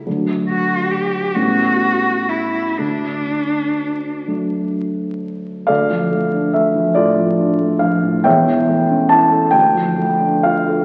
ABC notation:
X:1
M:6/8
L:1/16
Q:3/8=46
K:D
V:1 name="Cello"
z2 F2 G2 F4 E2 | D6 z6 | [K:Dm] z12 | z12 |]
V:2 name="Grand piano"
z12 | z12 | [K:Dm] [Adf]4 e2 [FAd]4 f2 | [^ceg]4 a2 g4 f2 |]
V:3 name="Grand piano"
[D,,F,A,D]6 [A,,G,B,C]6 | D,,6 [F,A,D]6 | [K:Dm] D,, F, A, D A, F, A,, F, D A, F, A,, | [E,,,E,,] E, A, ^C E A D,, F, A, D F A |]